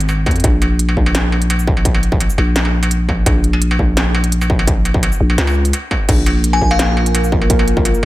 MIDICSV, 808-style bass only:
0, 0, Header, 1, 2, 480
1, 0, Start_track
1, 0, Key_signature, -5, "minor"
1, 0, Tempo, 352941
1, 597, Time_signature, 4, 2, 24, 8
1, 10948, End_track
2, 0, Start_track
2, 0, Title_t, "808-style bass"
2, 0, Program_c, 0, 38
2, 0, Note_on_c, 0, 32, 88
2, 357, Note_on_c, 0, 41, 84
2, 378, Note_off_c, 0, 32, 0
2, 579, Note_off_c, 0, 41, 0
2, 598, Note_on_c, 0, 34, 101
2, 1303, Note_off_c, 0, 34, 0
2, 1318, Note_on_c, 0, 34, 85
2, 3108, Note_off_c, 0, 34, 0
2, 3236, Note_on_c, 0, 34, 83
2, 4422, Note_off_c, 0, 34, 0
2, 4438, Note_on_c, 0, 34, 101
2, 5143, Note_off_c, 0, 34, 0
2, 5158, Note_on_c, 0, 34, 82
2, 6948, Note_off_c, 0, 34, 0
2, 7077, Note_on_c, 0, 34, 79
2, 7309, Note_off_c, 0, 34, 0
2, 7317, Note_on_c, 0, 37, 106
2, 7782, Note_off_c, 0, 37, 0
2, 8278, Note_on_c, 0, 34, 108
2, 8983, Note_off_c, 0, 34, 0
2, 8997, Note_on_c, 0, 34, 79
2, 10787, Note_off_c, 0, 34, 0
2, 10948, End_track
0, 0, End_of_file